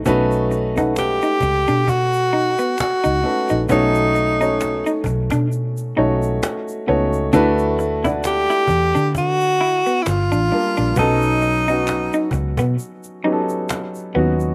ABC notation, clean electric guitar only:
X:1
M:4/4
L:1/16
Q:"Swing 16ths" 1/4=66
K:Bm
V:1 name="Clean electric guitar"
B, z2 ^D z D z =D z2 ^D B, z D z D | B, z2 ^D z D z =D z2 ^D z3 B, z | D z2 E z E z D z2 E B, z D z D | B, z2 ^D z D z B, z2 D z3 B, z |]